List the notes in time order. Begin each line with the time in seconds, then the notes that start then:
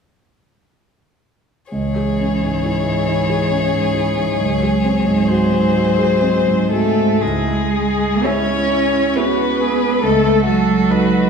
1.72 C#2 E3 G#4 C#5
1.96 G#4
2.20 C#4
2.43 G#2
2.65 E4
2.87 G#2
3.09 E4
3.30 G#4
3.51 C#4
3.72 G#2
3.95 E4
4.16 G#2
4.38 C#2 F#3
4.63 G#4
4.85 C4
5.07 G#2
5.28 F#4 C5
5.51 G#2
5.75 F#4
5.99 G#4
6.22 C4
6.47 G#2
6.70 A3 F#4 A4
6.97 G#2
7.21 C#2 G#3 E4 G#4
7.73 G#4
8.23 C#4 E4 G#4 C#5 E5
9.15 B3 C#4 E4 F#4 G#4 B4 E5
9.61 G#4
10.03 C#2 A3 A4
10.47 F#3 F#4
10.90 D#4 A4 B4 D#5